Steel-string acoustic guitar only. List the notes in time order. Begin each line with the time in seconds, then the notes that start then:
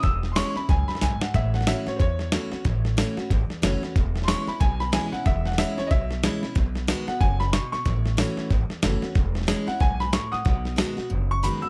0.03 E2
0.35 E3 G#3 C#4 E4
0.55 C#4 E4
0.69 F#2
1.02 G#2
1.34 A2
1.67 E3 A3 C#4 F#4
1.86 C#4 F#4
2.00 E2
2.32 E3 A3 C#4 F#4
2.51 C#4 F#4
2.65 A2
2.97 E3 A3 C#4 F#4
3.17 C#4 F#4
3.31 E2
3.62 E3 A3 C#4 F#4
3.82 C#4 F#4
3.96 E2
4.28 E3 G#3 C#4 E4
4.47 C#4 E4
4.60 B2
4.92 E3 G#3 C#4 E4
5.12 C#4 E4
5.26 E2
5.58 E3 G#3 C#4 E4
5.77 C#4 E4
5.91 B2
6.23 E3 G#3 C#4 E4
6.43 C#4 E4
6.55 B2
6.87 D#3 G#3 B3 F#4
7.07 B3 F#4
7.21 F#2
7.53 B2
7.85 A2
8.17 E3 A3 C#4 F#4
8.50 E2
8.82 E3 A3 C#4 F#4
9.02 C#4 F#4
9.15 E2
9.47 E3 G#3 C#4 E4
9.67 C#4 E4
9.80 G#2
10.13 A2
10.45 B2
10.76 D#3 G#3 B3 F#4
10.97 B3 F#4
11.10 F#2
11.43 D#3 G#3 B3 F#4
11.62 B3 F#4